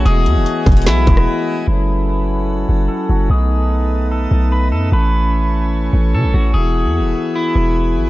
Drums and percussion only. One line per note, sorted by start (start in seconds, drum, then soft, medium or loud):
0.06 closed hi-hat medium
0.26 closed hi-hat medium
0.46 closed hi-hat medium
0.66 kick loud
0.66 closed hi-hat medium
0.66 open hi-hat medium
0.72 closed hi-hat medium
0.77 closed hi-hat medium
0.82 closed hi-hat medium
0.86 snare loud
0.86 closed hi-hat medium
1.07 kick loud
1.07 closed hi-hat medium
1.17 cross-stick loud